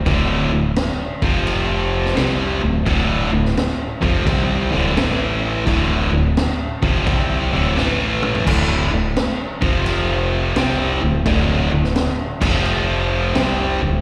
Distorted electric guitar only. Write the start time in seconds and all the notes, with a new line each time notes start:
0.06 D2 A2 D3
0.52 D2 A2
1.22 F2 C3 F3
2.16 C3 G3 C4
2.62 D2 A2
2.86 D2 A2 D3
3.32 D2 A2
4.01 F2 C3 F3
4.25 C3 G3 C4
4.71 D2 A2 D3
4.96 A2 E3 A3
5.65 D2 A2 D3
6.12 D2 A2
6.82 F2 C3 F3
7.06 C3 G3 C4
7.52 D2 A2 D3
7.77 A2 E3 A3
8.46 D2 A2 D3
8.91 D2 A2
9.61 F2 C3 F3
10.56 C3 G3 C4
11.01 D2 A2
11.26 D2 A2 D3
11.71 D2 A2
12.40 F2 C3 F3
13.35 C3 G3 C4
13.82 D2 A2